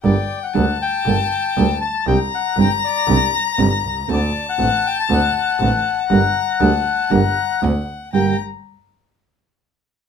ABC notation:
X:1
M:4/4
L:1/16
Q:1/4=119
K:Gm
V:1 name="Violin"
g4 a12 | b16 | a16 | b4 a4 b4 ^f4 |
b2 z12 z2 |]
V:2 name="Bandoneon"
d3 ^f3 g8 a2 | g2 ^f2 g2 d4 z6 | d3 ^f3 g a f8- | ^f12 z4 |
g2 z12 z2 |]
V:3 name="Nylon-string guitar"
[D,G,B,DA]2 z2 [D,G,B,DA]2 z2 [D,G,B,DA]2 z2 [D,G,B,DA]2 z2 | [C,G,CDG]2 z2 [C,G,CDG]2 z2 [C,G,CDG]2 z2 [C,G,CDG]2 z2 | [D,A,C^F]2 z2 [D,A,CF]2 z2 [D,A,CF]2 z2 [D,A,CF]2 z2 | [D,G,B,DG]2 z2 [D,G,B,DG]2 z2 [D,G,B,DG]2 z2 [D,A,C^F]2 z2 |
[G,,D,G,B,DG]2 z12 z2 |]
V:4 name="Double bass" clef=bass
G,,,2 z2 D,,2 z2 G,,,2 z2 D,,2 z2 | C,,2 z2 G,,,2 z2 C,,2 z2 G,,,2 C,,2 | D,,2 z2 A,,,2 z2 D,,2 z2 A,,,2 z2 | G,,,2 z2 D,,2 z2 G,,,2 z2 D,,2 z2 |
G,,,2 z12 z2 |]